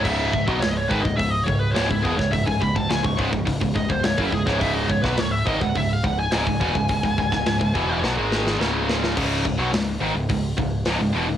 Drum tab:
CC |x---------------|----------------|----------------|----------------|
HH |----o---o---o---|o---o---o---o---|o---o---o---o---|o---o-----------|
SD |----o-------o--o|----o-------o--o|---oo-------o---|---oo---o-ooo-oo|
BD |o-oo--ooo-o--ooo|oooo-ooooooo-ooo|o-oo--ooo-o--ooo|oooo-oo---------|

CC |x---------------|
HH |----o---o---o---|
SD |----o-------o---|
BD |o-o-----o-o-----|